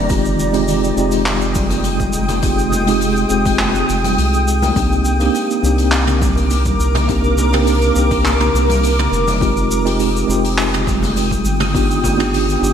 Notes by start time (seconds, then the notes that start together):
Already playing: F1 A#3 C4 D4 D#4 G4
0.09 G#3 C4 D#4 F4 G4 G5 D#6, kick, open hi-hat, shaker
0.25 shaker
0.39 shaker
0.53 G#3 C4 D#4 F4 G4, open hi-hat, shaker
0.68 open hi-hat, shaker
0.84 shaker
0.95 F1 G#3 C4 D#4 F4, shaker
1.00 G4
1.11 open hi-hat, shaker
1.26 clap, open hi-hat, shaker
1.41 shaker
1.55 kick, open hi-hat, high conga, shaker
1.70 open hi-hat, low conga, shaker
1.84 open hi-hat, shaker
1.98 kick, high conga, shaker
2.13 F1, shaker
2.28 open hi-hat, low conga, shaker
2.42 G#3 C4 D#4 F4 G4, kick, open hi-hat, shaker
2.59 shaker
2.72 low conga, shaker
2.87 G#3 C4 D#4 F4 G4, open hi-hat, shaker
3.00 open hi-hat, shaker
3.16 shaker
3.29 F1 G#3 C4 D#4 F4, shaker
3.33 G4
3.46 kick, open hi-hat, shaker
3.59 clap, open hi-hat, low conga, shaker
3.75 shaker
3.89 F1, open hi-hat, shaker
4.04 open hi-hat, high conga, shaker
4.18 C2, open hi-hat, shaker
4.34 shaker
4.48 shaker
4.62 open hi-hat, high conga, low conga, shaker
4.76 C2 A#3 C4 D4 D#4 G4 A#4 D6, kick, open hi-hat, shaker
4.92 shaker
5.05 shaker
5.20 A#3 C4 D4 D#4 G4, open hi-hat, shaker
5.34 open hi-hat, shaker
5.51 shaker
5.62 C2 A#3 C4 D4 D#4, shaker
5.66 G4
5.78 open hi-hat, shaker
5.92 clap, open hi-hat, shaker
6.07 mid tom, shaker
6.21 kick, open hi-hat, high conga, shaker
6.36 open hi-hat, low conga, shaker
6.50 open hi-hat, shaker
6.65 kick, high conga, shaker
6.80 C2, shaker
6.94 mid tom, open hi-hat, low conga, shaker
7.08 A#3 C4 D4 D#4 G4, kick, open hi-hat, shaker
7.24 shaker
7.38 low conga, shaker
7.52 A#3 C4 D4 D#4 G4, mid tom, open hi-hat, shaker
7.67 open hi-hat, shaker
7.82 shaker
7.94 C2 A#3 C4 D4 D#4, shaker
7.99 G4
8.11 kick, open hi-hat, shaker
8.25 clap, open hi-hat, low conga, shaker
8.40 mid tom, shaker
8.54 C2, open hi-hat, shaker
8.69 open hi-hat, high conga, shaker
8.83 open hi-hat, shaker
8.99 mid tom, shaker
9.12 F1, shaker
9.27 open hi-hat, high conga, low conga, shaker
9.40 G#3 C4 D#4 F4 G4 G5 D#6, kick, open hi-hat, shaker
9.57 shaker
9.71 shaker
9.85 G#3 C4 D#4 F4 G4, open hi-hat, shaker
10.00 open hi-hat, shaker
10.16 shaker
10.27 F1 G#3 C4 D#4 F4, shaker
10.31 G4
10.44 open hi-hat, shaker
10.58 clap, open hi-hat, shaker
10.74 mid tom, shaker
10.87 kick, open hi-hat, high conga, shaker
11.03 open hi-hat, low conga, shaker
11.17 open hi-hat, shaker
11.31 kick, high conga, shaker
11.45 G1, shaker
11.60 mid tom, open hi-hat, low conga, shaker
11.73 B3 D4 D#4 F4 G4 B4 F5 D#6, kick, open hi-hat, shaker
11.91 shaker
12.04 kick, open hi-hat, low conga, shaker
12.17 B3 D4 D#4 F4 G4, mid tom, open hi-hat, shaker
12.34 open hi-hat, shaker
12.49 shaker
12.59 G1 B3 D4 D#4 F4
12.64 G4, shaker